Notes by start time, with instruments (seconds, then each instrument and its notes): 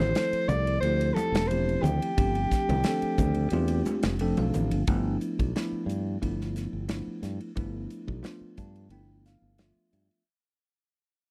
Already playing: tine electric piano G4, soprano saxophone C5
0.00 fingered electric bass A1, snare
0.15 tine electric piano F3 A3 C4 E4 A4, snare, ride
0.33 muted fingered electric bass stroke, ride
0.48 fingered electric bass C2, soprano saxophone D5, hi-hat pedal, low conga
0.67 ride
0.81 fingered electric bass D2, tine electric piano F3 A3 E4, soprano saxophone C5, ride
0.85 tine electric piano C4 G4
1.01 ride
1.14 soprano saxophone A4, muted fingered electric bass stroke, hi-hat pedal, high conga
1.32 fingered electric bass E1, snare, ride, high conga
1.48 tine electric piano F3 A3 C4 E4 G4, soprano saxophone C5, ride
1.69 ride
1.82 fingered electric bass D2, soprano saxophone G4, hi-hat pedal, low conga
2.02 ride
2.17 fingered electric bass G1, tine electric piano F3 A3 C4 D4 G4, kick, ride
2.35 ride
2.51 kick, snare, hi-hat pedal
2.69 fingered electric bass C2, ride, high conga, low conga
2.84 tine electric piano F3 A3 C4 D4 A4, snare, ride
3.02 muted fingered electric bass stroke, ride
3.18 fingered electric bass D2, kick, hi-hat pedal, low conga
3.34 ride
3.50 fingered electric bass E2, tine electric piano A3 C4 D4 F4 G4, ride, high conga
3.68 ride
3.85 muted fingered electric bass stroke, hi-hat pedal, high conga
4.03 fingered electric bass F1, snare, ride, high conga
4.19 tine electric piano F3 A3 C4 D4 A4 G5, ride
4.37 fingered electric bass B1, tine electric piano F5, ride, high conga
4.53 fingered electric bass A1, hi-hat pedal, low conga
4.71 fingered electric bass G1, ride
4.87 fingered electric bass G1, tine electric piano F3 A3 B3 D4 E4, kick, ride
5.21 hi-hat pedal, ride
5.39 fingered electric bass B1, kick, ride
5.56 tine electric piano F3 A3 B3 D4 E4, snare, ride
5.72 muted fingered electric bass stroke
5.86 fingered electric bass G2, hi-hat pedal, ride
6.22 fingered electric bass G1, tine electric piano F3 A3 B3 D4 E4, kick, ride
6.41 snare
6.56 snare, hi-hat pedal, ride
6.73 fingered electric bass G1
6.88 tine electric piano F3 A3 B3 D4 E4, snare, ride
7.07 muted fingered electric bass stroke
7.23 fingered electric bass G2, snare, hi-hat pedal, ride
7.40 ride
7.56 fingered electric bass G1, tine electric piano F3 A3 B3 D4 E4, kick, ride
7.90 hi-hat pedal, ride
8.07 fingered electric bass B1, kick
8.23 tine electric piano F3 A3 B3 D4 F4, snare, ride
8.41 muted fingered electric bass stroke
8.57 fingered electric bass G2, tine electric piano A5, kick, hi-hat pedal, ride
8.76 ride
8.89 fingered electric bass G1, tine electric piano F3 A3 B3 D4 E4 G5, ride
9.26 tine electric piano F5, snare, hi-hat pedal, ride
9.42 fingered electric bass G1
9.58 tine electric piano F3 A3 B3 D4 F4 E5, snare, ride
9.76 muted fingered electric bass stroke
9.93 fingered electric bass G2, tine electric piano E5, hi-hat pedal, ride
10.11 ride